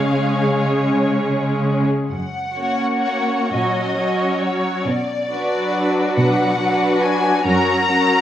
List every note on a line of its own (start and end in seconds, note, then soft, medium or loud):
0.00 1.87 C#3 soft
0.00 1.87 G#3 soft
0.00 1.87 C#4 soft
0.00 1.87 G#4 soft
0.00 1.91 C#5 soft
0.00 0.64 F5 soft
2.11 3.36 F#2 soft
2.11 3.49 F#5 soft
2.57 3.51 A#3 soft
2.57 3.51 C#4 soft
2.57 3.50 F#4 soft
2.57 3.50 C#5 soft
3.51 4.70 A#2 soft
3.51 3.97 F#3 soft
3.51 3.97 C#4 soft
3.51 3.97 F#4 soft
3.51 3.96 C#5 soft
3.51 4.42 D#5 soft
3.98 4.85 F#3 soft
3.98 4.85 C#4 soft
3.98 4.86 F#4 soft
3.98 4.86 C#5 soft
4.41 4.86 C#5 soft
4.86 6.02 B2 soft
4.86 6.18 D5 soft
5.30 6.59 F#3 soft
5.30 6.59 D4 soft
5.30 6.59 F#4 soft
5.30 6.59 B4 soft
6.17 7.30 B2 soft
6.17 7.02 F#5 medium
6.61 7.45 F#3 soft
6.61 7.45 D4 soft
6.61 7.44 F#4 soft
6.61 7.46 B4 soft
7.02 7.46 G#5 medium
7.45 8.21 F#2 medium
7.45 7.91 F#3 soft
7.45 7.90 C#4 soft
7.45 7.89 F#4 soft
7.45 7.90 A#4 soft
7.45 8.21 A#5 medium
7.91 8.21 F#3 soft
7.91 8.21 C#4 soft
7.91 8.21 F#4 soft
7.91 8.21 A#4 soft